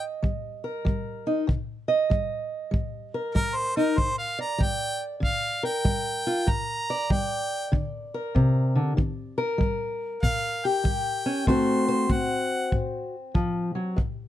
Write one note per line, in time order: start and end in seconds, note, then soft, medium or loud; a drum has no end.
0.00 0.18 G3 medium
0.00 1.45 D#5 medium
0.23 0.81 G3 medium
0.23 kick medium
0.64 1.50 A#4 medium
0.85 1.44 G3 medium
0.85 kick medium
1.27 1.46 D#4 medium
1.47 2.06 C3 medium
1.47 kick medium
1.88 3.95 D#5 medium
2.10 2.69 G3 medium
2.10 kick medium
2.71 3.31 G3 medium
2.71 kick medium
3.14 5.63 A#4 medium
3.35 3.94 G3 medium
3.35 3.57 A#4 medium
3.35 kick medium
3.56 3.76 C5 medium
3.76 3.96 D#4 medium
3.76 3.99 A#4 medium
3.96 4.56 G2 medium
3.96 4.18 C5 medium
3.96 kick medium
4.18 4.39 F5 medium
4.39 6.46 D5 medium
4.39 4.64 A#5 medium
4.58 5.18 G3 medium
4.58 5.02 G5 loud
4.58 kick medium
5.20 5.80 D3 medium
5.20 5.64 F5 medium
5.20 kick medium
5.63 8.14 A#4 medium
5.63 6.51 G5 medium
5.85 6.44 G3 medium
5.85 kick medium
6.27 6.46 F4 medium
6.47 7.06 G2 medium
6.47 7.13 A#5 medium
6.47 kick medium
6.90 8.96 D5 medium
7.10 7.69 G3 medium
7.10 7.72 G5 medium
7.10 kick medium
7.72 8.31 D3 medium
7.72 kick medium
8.14 8.96 A#4 medium
8.35 8.77 C3 medium
8.35 kick medium
8.75 8.97 D3 medium
8.97 9.56 D#3 medium
8.97 kick medium
9.38 11.45 A#4 medium
9.58 10.18 G3 medium
9.58 kick medium
10.23 10.81 A#2 medium
10.23 10.67 F5 medium
10.23 kick medium
10.65 11.46 G4 medium
10.65 11.46 G5 medium
10.84 11.43 G3 medium
10.84 kick medium
11.26 11.45 C#4 medium
11.47 12.06 D3 medium
11.47 12.09 A3 medium
11.47 13.98 C4 medium
11.47 13.15 F#4 medium
11.47 11.87 C5 medium
11.47 12.14 C6 medium
11.47 kick medium
11.88 13.95 C5 medium
12.10 12.69 A3 medium
12.10 12.72 F#5 medium
12.10 kick medium
12.72 13.31 A2 medium
12.72 kick medium
13.34 13.75 F3 medium
13.34 kick medium
13.75 13.97 F#3 medium
13.96 14.28 G2 medium
13.96 kick medium